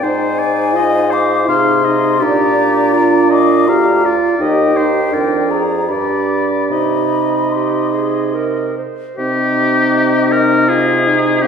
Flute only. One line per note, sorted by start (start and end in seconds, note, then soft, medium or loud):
0.04 1.14 G#5 medium
1.13 1.50 D6 medium
1.49 2.24 C6 medium
2.23 3.31 A#5 medium
3.32 3.69 D6 medium
3.68 4.14 A#5 medium
4.39 5.52 G5 medium
5.51 5.90 A#5 medium
5.89 6.69 B5 medium
6.69 7.53 B5 medium
7.52 8.34 C6 soft
9.19 11.47 D#5 medium